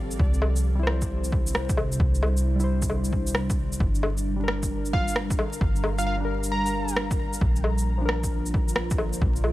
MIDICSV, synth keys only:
0, 0, Header, 1, 2, 480
1, 0, Start_track
1, 0, Tempo, 451128
1, 213, Time_signature, 4, 2, 24, 8
1, 10135, End_track
2, 0, Start_track
2, 0, Title_t, "Synth keys"
2, 0, Program_c, 0, 88
2, 0, Note_on_c, 0, 55, 77
2, 0, Note_on_c, 0, 65, 72
2, 0, Note_on_c, 0, 69, 84
2, 178, Note_off_c, 0, 55, 0
2, 200, Note_off_c, 0, 65, 0
2, 220, Note_off_c, 0, 69, 0
2, 801, Note_on_c, 0, 55, 80
2, 843, Note_on_c, 0, 64, 73
2, 885, Note_on_c, 0, 72, 87
2, 2707, Note_off_c, 0, 55, 0
2, 2718, Note_on_c, 0, 55, 78
2, 2728, Note_off_c, 0, 64, 0
2, 2749, Note_off_c, 0, 72, 0
2, 2763, Note_on_c, 0, 64, 72
2, 2806, Note_on_c, 0, 72, 83
2, 4018, Note_off_c, 0, 55, 0
2, 4040, Note_off_c, 0, 64, 0
2, 4062, Note_off_c, 0, 72, 0
2, 4640, Note_on_c, 0, 55, 78
2, 4680, Note_on_c, 0, 62, 69
2, 4720, Note_on_c, 0, 70, 87
2, 6546, Note_off_c, 0, 55, 0
2, 6565, Note_on_c, 0, 55, 78
2, 6566, Note_off_c, 0, 62, 0
2, 6587, Note_off_c, 0, 70, 0
2, 6603, Note_on_c, 0, 62, 74
2, 6646, Note_on_c, 0, 70, 88
2, 7861, Note_off_c, 0, 55, 0
2, 7880, Note_off_c, 0, 62, 0
2, 7902, Note_off_c, 0, 70, 0
2, 8486, Note_on_c, 0, 53, 79
2, 8526, Note_on_c, 0, 62, 70
2, 8569, Note_on_c, 0, 70, 85
2, 10135, Note_off_c, 0, 53, 0
2, 10135, Note_off_c, 0, 62, 0
2, 10135, Note_off_c, 0, 70, 0
2, 10135, End_track
0, 0, End_of_file